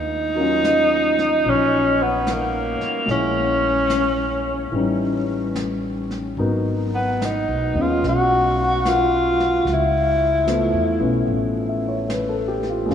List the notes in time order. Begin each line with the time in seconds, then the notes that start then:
Already playing: D#2 D#4
0.35 F#3 C#4 A#4
0.40 F4
0.64 snare, hi-hat pedal
1.19 snare
1.45 A#1 F3 C#4 D#4, brush sweep
2.03 B3
2.27 snare, hi-hat pedal
2.32 A#3
2.81 muted upright bass stroke, snare
3.06 A#1 G#3 A#3 C#4, brush sweep, snare
3.11 C#4 E4
3.90 snare, hi-hat pedal
4.72 A1 E3 G3 C#4, brush sweep
4.77 D#4
5.55 snare, hi-hat pedal
6.11 snare
6.37 G#1 F#3 B3 D#4 A#4, brush sweep
6.95 B3
7.22 D#4, snare, hi-hat pedal
7.48 B1
7.74 D#2 G#3 B3 C#4
7.82 F4
8.03 B1, brush sweep, snare
8.09 F#4
8.85 F4, snare, hi-hat pedal
9.40 snare
9.65 C#2, brush sweep, snare
9.73 E4
10.46 F3 A3 B3 E4, snare, hi-hat pedal
10.73 E2
11.00 B1 B3 C#4
11.28 A1, brush sweep
11.69 E5
11.89 C#5
12.09 B4, snare, hi-hat pedal
12.29 A4
12.48 G4
12.63 snare
12.70 F4
12.86 F#1 G#3 A#3 C#4
12.91 F4, brush sweep, snare